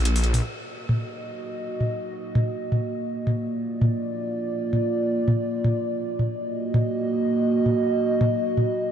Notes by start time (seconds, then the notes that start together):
Already playing: A#1
0.05 closed hi-hat
0.16 open hi-hat
0.24 closed hi-hat
0.34 mid tom, open hi-hat
0.42 A#3 F#4 D#5
0.89 mid tom
1.81 mid tom
2.35 mid tom
2.72 mid tom
3.27 mid tom
3.34 F4 D5
3.82 mid tom
4.73 mid tom
5.28 mid tom
5.64 mid tom
6.19 mid tom
6.27 A#3 F#4 D#5
6.74 mid tom
7.66 mid tom
8.21 mid tom
8.57 mid tom